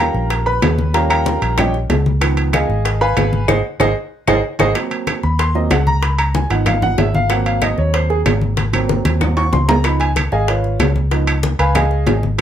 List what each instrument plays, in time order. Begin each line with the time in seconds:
Already playing: grand piano F3 G3 C#4
0.00 grand piano A#4 F5 G5 A#5
0.14 fingered electric bass A#1, high bongo
0.30 high bongo, high conga, high timbale
0.46 grand piano B4 B5, high bongo, high conga
0.62 fingered electric bass D#2, high bongo, low bongo, high conga, high timbale, low timbale, claves
0.78 high conga
0.93 grand piano F3 G3 C#4 A#4 F5 G5 A#5, high bongo, high conga, high timbale
1.10 grand piano A#4 F5 G5 A#5, high bongo, high conga, high timbale, claves
1.26 high bongo, high conga, low timbale
1.42 fingered electric bass A#1, high bongo, high conga, high timbale
1.58 grand piano F3 G3 C#4 G4 C#5 D#5 G5, high bongo, high conga, low conga, high timbale, claves
1.74 high bongo, high conga
1.89 fingered electric bass C#2, high bongo, low bongo, high conga, high timbale, low timbale
2.06 high conga
2.21 grand piano D#3 F3 B3, high bongo, high conga, high timbale, claves
2.37 high bongo, high conga, high timbale
2.53 grand piano G#4 D#5 F5 G#5, high bongo, high conga, high timbale, low timbale, claves
2.69 fingered electric bass G#1, high bongo
2.85 high bongo, high conga, high timbale
3.01 grand piano B4 F5 G#5 B5, high bongo, high conga
3.17 fingered electric bass G#1, high bongo, low bongo, high conga, high timbale, low timbale, claves
3.33 high conga
3.48 fingered electric bass G#1, grand piano G#4 C5 D#5, high bongo, high conga, high timbale, claves
3.80 fingered electric bass G#1, grand piano G#4 C5 D#5, high bongo, high conga, high timbale, claves
4.28 fingered electric bass G#1, grand piano G#4 C5 D#5, high bongo, high conga, high timbale, claves
4.59 fingered electric bass G#1, grand piano G#4 C5 D#5, high bongo, high conga, high timbale, claves
4.75 grand piano F#3 A#3 C4, high bongo, high conga, high timbale, claves
4.91 high bongo, high conga, high timbale
5.07 high bongo, high conga, high timbale, low timbale, claves
5.23 fingered electric bass D#2, grand piano B5, high bongo
5.39 grand piano C6, high bongo, high conga, high timbale
5.55 grand piano F#3 A#3 C4 D#5, high bongo, high conga
5.71 fingered electric bass C#2, grand piano F#5, high bongo, low bongo, high conga, high timbale, low timbale, claves
5.87 grand piano A#5, high conga
6.03 grand piano B5, high bongo, high conga, high timbale
6.18 grand piano A#5, high bongo, high conga, high timbale, claves
6.35 grand piano G#5, high bongo, high conga, low timbale
6.50 fingered electric bass G#1, grand piano F3 B3 D#4 F#5, high bongo, high conga, high timbale
6.66 grand piano F5, high bongo, high conga, low conga, high timbale, claves
6.82 grand piano F#5, high bongo, high conga, low conga
6.98 fingered electric bass G#1, grand piano E5, high bongo, low bongo, high conga, high timbale, low timbale
7.15 grand piano F5, high conga
7.30 grand piano F#3 A#3 C4 F#5, high bongo, high conga, high timbale, claves
7.46 grand piano F5, high bongo, high conga, high timbale
7.62 grand piano D#5, high bongo, high conga, high timbale, low timbale, claves
7.78 fingered electric bass D#2, grand piano C#5, high bongo
7.94 grand piano C5, high bongo, high conga, high timbale
8.10 grand piano G#4, high bongo, high conga
8.26 fingered electric bass G#1, high bongo, low bongo, high conga, high timbale, low timbale, claves
8.42 high conga
8.57 high bongo, high conga, high timbale
8.73 grand piano F#3 A#3 C4, high bongo, high conga, high timbale, claves
8.89 high bongo, high conga, low timbale
9.05 fingered electric bass D#2, high bongo, high conga, high timbale
9.21 high bongo, low conga, high timbale, claves
9.37 grand piano C#6, high bongo, high timbale
9.53 fingered electric bass C#2, grand piano C6, high bongo, low bongo, low conga
9.68 grand piano A#5, low conga, low timbale
9.84 grand piano F3 B3 D#4 B5, high bongo, high conga, high timbale, claves
10.00 grand piano G#5, high bongo, high conga, high timbale
10.16 high bongo, high conga, high timbale, low timbale, claves
10.32 fingered electric bass G#1, grand piano G#4 D#5 F5 G#5, high bongo
10.48 grand piano F4 B4 C#5 F5, high bongo, high conga, high timbale
10.64 high bongo, high conga
10.80 fingered electric bass C#2, high bongo, low bongo, high conga, high timbale, low timbale, claves
10.96 high conga
11.11 grand piano F3 B3 D#4, high bongo, high conga, high timbale
11.27 high bongo, high conga, high timbale, claves
11.43 high bongo, high conga, low timbale
11.59 fingered electric bass C#2, grand piano B4 F5 G#5 B5, high bongo, high conga, high timbale
11.75 grand piano G#4 D#5 F5 G#5, high bongo, high conga, low conga, high timbale, claves
11.91 high bongo, high conga
12.07 fingered electric bass G#1, high bongo, low bongo, high conga, high timbale, low timbale
12.23 high conga
12.38 grand piano F#3